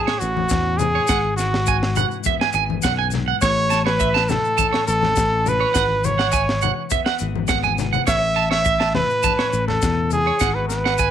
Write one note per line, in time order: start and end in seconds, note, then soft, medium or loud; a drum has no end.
0.00 1.05 A2 medium
0.00 0.22 E3 medium
0.00 0.51 C#4 medium
0.00 1.09 E4 medium
0.00 0.20 G#4 medium
0.07 0.15 C#5 medium
0.07 snare medium
0.19 0.45 A1 medium
0.19 0.81 E3 medium
0.19 0.79 F#4 loud
0.19 maracas medium
0.37 high conga medium
0.49 0.98 E2 medium
0.49 1.06 C#4 medium
0.49 kick loud
0.49 snare medium
0.49 maracas loud
0.78 1.39 E3 medium
0.78 1.36 G#4 loud
0.78 low conga medium
0.78 maracas medium
0.95 1.03 C#5 medium
1.07 2.04 G#1 loud
1.07 2.84 G#2 medium
1.07 1.17 F#5 loud
1.07 kick loud
1.07 snare medium
1.07 maracas loud
1.36 2.55 E3 medium
1.36 2.20 F#4 medium
1.36 snare soft
1.36 maracas medium
1.54 snare medium
1.66 1.82 C#4 medium
1.66 1.76 G#5 medium
1.66 kick loud
1.66 maracas loud
1.82 1.96 E4 medium
1.82 snare medium
1.96 4.30 E4 medium
1.96 2.05 F#5 medium
1.96 high conga medium
1.96 low conga medium
1.96 maracas medium
2.11 maracas soft
2.24 3.39 B3 medium
2.24 2.34 E5 medium
2.24 kick loud
2.24 high conga medium
2.24 maracas loud
2.41 2.49 G#5 medium
2.41 snare medium
2.53 2.78 G#1 medium
2.53 3.72 E3 medium
2.53 2.63 G#5 medium
2.53 maracas medium
2.70 high conga medium
2.82 3.31 B1 loud
2.82 3.13 F#2 medium
2.82 2.92 F#5 medium
2.82 kick medium
2.82 snare medium
2.82 maracas loud
2.99 3.06 G#5 medium
3.11 3.42 G#2 medium
3.11 snare soft
3.11 low conga medium
3.11 maracas medium
3.28 3.35 F#5 medium
3.41 4.36 A1 loud
3.41 5.72 A2 medium
3.41 3.83 C#5 loud
3.41 3.50 C#5 loud
3.41 kick loud
3.41 snare medium
3.41 maracas loud
3.70 4.88 E3 medium
3.70 3.79 A5 medium
3.70 snare soft
3.70 maracas medium
3.85 4.31 B4 loud
3.85 3.94 C#5 medium
3.85 snare medium
4.00 4.08 E5 medium
4.00 kick loud
4.00 maracas loud
4.14 4.22 A5 medium
4.14 snare medium
4.29 6.34 E4 medium
4.29 4.87 A4 loud
4.29 snare medium
4.29 high conga medium
4.29 low conga medium
4.29 maracas medium
4.45 maracas soft
4.58 5.16 C#4 medium
4.58 4.66 A5 medium
4.58 kick loud
4.58 high conga medium
4.58 maracas loud
4.73 4.81 C#5 medium
4.73 snare medium
4.87 5.12 A1 loud
4.87 5.46 E3 medium
4.87 5.50 A4 loud
4.87 maracas medium
5.02 snare soft
5.02 high conga medium
5.16 5.64 A1 loud
5.16 5.72 C#4 medium
5.16 kick medium
5.16 snare medium
5.16 maracas loud
5.46 6.04 E3 medium
5.46 6.06 B4 loud
5.46 low conga medium
5.46 maracas medium
5.60 5.68 C#5 medium
5.74 6.70 G#1 loud
5.74 5.82 F#5 loud
5.74 muted clean electric guitar stroke medium
5.74 kick loud
5.74 snare medium
5.74 maracas loud
6.04 7.20 E3 medium
6.04 6.92 C#5 loud
6.04 high conga medium
6.04 low conga medium
6.04 maracas medium
6.19 6.27 F#5 medium
6.19 snare medium
6.19 maracas soft
6.32 8.65 E4 medium
6.32 6.41 G#5 medium
6.32 kick loud
6.32 maracas loud
6.49 snare medium
6.61 6.71 F#5 medium
6.61 high conga medium
6.61 low conga medium
6.61 maracas medium
6.90 7.50 B3 medium
6.90 7.00 E5 medium
6.90 kick loud
6.90 high conga medium
6.90 maracas loud
7.06 7.14 F#5 medium
7.06 snare medium
7.19 7.45 G#1 medium
7.19 7.78 E3 medium
7.19 maracas medium
7.35 high conga medium
7.47 7.97 G#1 medium
7.47 8.05 B3 medium
7.47 7.57 F#5 medium
7.47 kick medium
7.47 snare medium
7.47 high conga medium
7.47 maracas loud
7.63 7.72 G#5 medium
7.63 high conga medium
7.63 maracas soft
7.78 8.37 E3 medium
7.78 snare soft
7.78 low conga medium
7.78 maracas medium
7.93 8.01 F#5 medium
7.93 low conga medium
7.93 maracas soft
8.07 9.02 A1 loud
8.07 10.11 A2 medium
8.07 8.15 C#5 medium
8.07 8.49 E5 loud
8.07 kick medium
8.07 snare medium
8.07 maracas loud
8.36 9.53 E3 medium
8.36 8.44 A5 medium
8.51 8.59 C#5 medium
8.51 8.92 E5 loud
8.51 snare medium
8.65 8.95 E4 medium
8.65 8.73 E5 medium
8.65 kick loud
8.65 maracas loud
8.80 8.88 A5 medium
8.80 snare medium
8.95 10.43 E4 medium
8.95 9.64 B4 loud
8.95 snare medium
8.95 high conga medium
8.95 low conga medium
9.10 maracas soft
9.23 10.38 C#4 medium
9.23 9.32 A5 loud
9.23 kick loud
9.23 high conga medium
9.23 maracas loud
9.39 9.47 C#5 medium
9.39 snare medium
9.53 9.77 A1 medium
9.53 10.41 E3 medium
9.53 maracas medium
9.68 10.08 A4 medium
9.68 snare soft
9.68 high conga medium
9.82 10.30 E2 medium
9.82 10.12 B2 medium
9.82 kick medium
9.82 snare medium
9.82 maracas loud
10.11 10.56 G#4 loud
10.11 muted clean electric guitar stroke medium
10.11 low conga medium
10.11 maracas medium
10.27 10.35 C#5 medium
10.40 11.11 G#1 loud
10.40 11.11 G#2 medium
10.40 10.71 E3 medium
10.40 11.11 B3 medium
10.40 11.00 E4 medium
10.40 10.49 F#5 loud
10.40 kick medium
10.40 snare medium
10.40 maracas loud
10.44 11.11 F#4 medium
10.54 10.67 B4 medium
10.68 11.11 E3 medium
10.68 11.11 B4 medium
10.68 snare soft
10.68 maracas medium
10.85 10.93 F#5 medium
10.85 snare medium
10.98 11.11 E4 medium
10.98 11.07 G#5 medium
10.98 kick loud
10.98 maracas loud